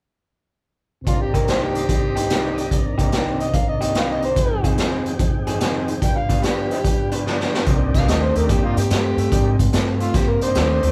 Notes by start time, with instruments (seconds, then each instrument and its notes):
1.01 tonewheel organ C2 C3
1.07 tonewheel organ D#3 D4, harmonica F4, kick, closed hi-hat
1.12 tonewheel organ A#4
1.21 harmonica G4
1.34 clean electric guitar C3 A#3 D#4 G4, harmonica A#4, kick, closed hi-hat
1.48 clean electric guitar C3 A#3 D#4 G4, harmonica C5, snare, closed hi-hat
1.63 harmonica G4
1.75 tonewheel organ G3 D#4 C5, closed hi-hat
1.89 kick, closed hi-hat
2.09 tonewheel organ C5
2.16 clean electric guitar C3 A#3 D#4 G4, closed hi-hat
2.30 clean electric guitar C3 A#3 D#4 G4, tonewheel organ D5, snare, closed hi-hat
2.50 tonewheel organ D#5
2.58 closed hi-hat
2.70 tonewheel organ C2 C3 D#3 D4 A#4, kick, closed hi-hat
2.98 clean electric guitar C3 A#3 D#4 G4, kick, closed hi-hat
3.12 clean electric guitar C3 A#3 D#4 G4, snare, closed hi-hat
3.40 harmonica D#5, closed hi-hat
3.53 harmonica F5, kick, closed hi-hat
3.69 harmonica D#5
3.81 clean electric guitar C3 A#3 D#4 G4, harmonica D#5, closed hi-hat
3.94 clean electric guitar C3 A#3 D#4 G4, harmonica F5, snare, closed hi-hat
4.12 harmonica D#5
4.22 harmonica C5, closed hi-hat
4.34 tonewheel organ F2 C3 D#3 G#3, kick, closed hi-hat
4.39 tonewheel organ G4
4.64 clean electric guitar F3 C4 D#4 G#4, kick, closed hi-hat
4.78 clean electric guitar F3 C4 D#4 G#4, snare, closed hi-hat
5.06 closed hi-hat
5.19 kick, closed hi-hat
5.47 clean electric guitar F3 C4 D#4 G#4, closed hi-hat
5.60 clean electric guitar F3 C4 D#4 G#4, snare, closed hi-hat
5.88 closed hi-hat
5.99 tonewheel organ G2 D3 F3, kick, closed hi-hat
6.03 tonewheel organ B3 G4, harmonica G5
6.17 harmonica F5
6.29 clean electric guitar G2 F3 B3 D4, kick, closed hi-hat
6.42 clean electric guitar G2 F3 B3 D4, harmonica G4, snare, closed hi-hat
6.71 harmonica C4 D#4 G4, closed hi-hat
6.84 kick, closed hi-hat
7.11 clean electric guitar G2 F3 B3 D4, closed hi-hat
7.26 clean electric guitar G2 F3 B3 D4, snare
7.40 snare
7.54 snare
7.66 fingered electric bass C2, clean electric guitar C3 G3, tonewheel organ A#3 D4 D#4 G4, kick, closed hi-hat
7.94 fingered electric bass C2, harmonica F5, kick, snare, closed hi-hat
8.08 fingered electric bass D#2, clean electric guitar C3 A3, harmonica D#5, snare, closed hi-hat
8.23 harmonica C5
8.35 fingered electric bass D#2, clean electric guitar C3 A3, harmonica A#4, closed hi-hat
8.49 fingered electric bass G2, clean electric guitar C3 A#3, harmonica G4, kick, closed hi-hat
8.65 harmonica F4
8.77 fingered electric bass G2, harmonica G4, closed hi-hat
8.90 fingered electric bass G2, clean electric guitar C3 A3, snare, closed hi-hat
9.17 fingered electric bass G2, clean electric guitar C3 A3, closed hi-hat
9.31 fingered electric bass G#2, clean electric guitar C3 G3, tonewheel organ A#3 D4 D#4 G4, kick, closed hi-hat
9.59 fingered electric bass G#2, kick, closed hi-hat
9.73 fingered electric bass G2, clean electric guitar C3 A3, snare, closed hi-hat
10.00 clean electric guitar C3 A3, harmonica F4, closed hi-hat
10.14 fingered electric bass G2, clean electric guitar C3 A#3, harmonica G4, kick, snare, closed hi-hat
10.29 harmonica A#4
10.41 tonewheel organ A#3 D4 D#4 G4, harmonica C5, closed hi-hat
10.55 fingered electric bass D#2, clean electric guitar C3 A3, snare, closed hi-hat
10.82 fingered electric bass D#2, clean electric guitar C3 A3, closed hi-hat